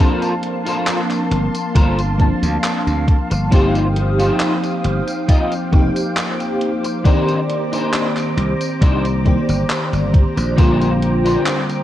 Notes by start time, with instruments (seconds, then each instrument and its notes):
Already playing: fm electric piano F3
0.00 fm electric piano A#3 C4 D4 A5, string machine A#3 F5 A5 C6, clean electric guitar F4 A4 A#4 C5
0.22 closed hi-hat, tambourine
0.43 closed hi-hat
0.65 clean electric guitar F4 A4 A#4 C5, closed hi-hat, tambourine
0.87 clap, closed hi-hat, tambourine
1.11 clap, closed hi-hat, tambourine
1.31 slap bass G1, muted clean electric guitar stroke, closed hi-hat
1.55 closed hi-hat, tambourine
1.75 slap bass G1, clean electric guitar F4 A4 A#4 C5, kick, closed hi-hat, tambourine
1.99 closed hi-hat, tambourine
2.18 fm electric piano F3 A#3 C4 D4 A5, muted clean electric guitar stroke, kick, closed hi-hat
2.43 slap bass D2, closed hi-hat, tambourine
2.64 clap, closed hi-hat, tambourine
2.87 slap bass D2, closed hi-hat, tambourine
3.08 kick, closed hi-hat
3.30 slap bass G1, muted clean electric guitar stroke, closed hi-hat, tambourine
3.50 fm electric piano F3 A#3 C4 D#4 G4, clean electric guitar D#4 F4 G4 C5, string machine C5 G5 D#6, kick, closed hi-hat, tambourine
3.75 closed hi-hat, tambourine
3.96 closed hi-hat
4.19 clean electric guitar D#4 F4 G4 C5, closed hi-hat, tambourine
4.40 clap, closed hi-hat, tambourine
4.64 closed hi-hat, tambourine
4.84 slap bass G1, muted clean electric guitar stroke, closed hi-hat
5.08 closed hi-hat, tambourine
5.28 clean electric guitar D#4 F4 G4 D#5, string machine D6, kick, closed hi-hat, tambourine
5.52 closed hi-hat, tambourine
5.71 slap bass F1, fm electric piano F3 A#3 C4 D#4 G4, muted clean electric guitar stroke, kick, closed hi-hat
5.96 closed hi-hat, tambourine
6.17 clap, closed hi-hat, tambourine
6.40 closed hi-hat, tambourine
6.61 closed hi-hat
6.84 muted clean electric guitar stroke, closed hi-hat, tambourine
7.04 fm electric piano D#3 A#3 C4 G4 D5, clean electric guitar D4 D#4 A#4 C5, string machine A#5, kick, closed hi-hat, tambourine
7.28 closed hi-hat, tambourine
7.50 closed hi-hat
7.72 clean electric guitar D4 D#4 A#4 C5, closed hi-hat, tambourine
7.94 clap, closed hi-hat, tambourine
8.17 clap, closed hi-hat, tambourine
8.37 slap bass C2, muted clean electric guitar stroke, closed hi-hat
8.61 closed hi-hat, tambourine
8.81 slap bass C2, clean electric guitar D4 D#4 A#4 C5, kick, closed hi-hat, tambourine
9.05 closed hi-hat, tambourine
9.24 fm electric piano D#3 A#3 C4 G4 D5, muted clean electric guitar stroke, kick, closed hi-hat
9.49 slap bass G1, closed hi-hat, tambourine
9.70 clap, closed hi-hat, tambourine
9.93 slap bass G1, closed hi-hat, tambourine
10.14 kick, closed hi-hat
10.36 slap bass A#1, muted clean electric guitar stroke, closed hi-hat, tambourine
10.56 fm electric piano D3 G3 A#3 C4 F4, clean electric guitar D4 G4 A#4 C5, string machine G5 D6, kick, closed hi-hat, tambourine
10.81 closed hi-hat, tambourine
11.02 closed hi-hat
11.25 clean electric guitar D4 G4 A#4 C5, closed hi-hat, tambourine
11.46 clap, closed hi-hat, tambourine
11.70 closed hi-hat, tambourine